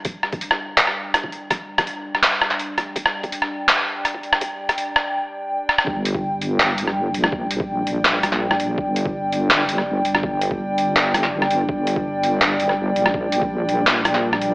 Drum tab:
HH |x--xx---x---x-x-|x--xx---x---x-x-|x--xx---x---x-x-|x--xx-----------|
CP |--------x-------|--------x--x----|--------x-------|----------------|
SD |--r--r---r--r---|r--r---r--r---r-|-r---r--r---r--r|---r--r-------rr|
BD |o--o---------o--|o--o----------o-|o--o---------o--|o--o------------|

HH |--x---x---x---x-|--x---x---x---x-|--x---x---x---x-|--x---x---x---x-|
CP |--------x-------|--------x--x----|--------x-------|--------x--x----|
SD |-----------r---r|----------r--r--|-----------r---r|----------r--r--|
BD |o--o------------|o--o------------|o--o------------|o--o------------|

HH |--x---x---x---x-|--x---x---x---x-|
CP |--------x-------|--------x--x----|
SD |-----------r---r|----------r--r--|
BD |o--o------------|o--o------------|